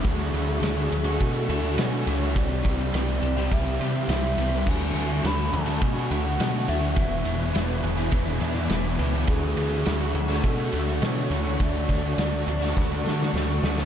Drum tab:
CC |----------------|----------------|x---------------|----------------|
RD |x-x-x-x-x-x-x-x-|x-x-x-x-x-x-x-x-|--x-x-x-x-x-x-x-|x-x-x-x-x-x-x-x-|
SD |----o-------o---|----o-------o---|----o-------o---|----o-------o---|
BD |o-------o-------|o-o-----o-------|o-------o-------|o-------o-------|

CC |----------------|----------------|
RD |x-x-x-x-x-x-x-x-|x-x-x-x---------|
SD |----o--o----o---|----o--oo-ooo-oo|
BD |o-------o-------|o-o-----o-------|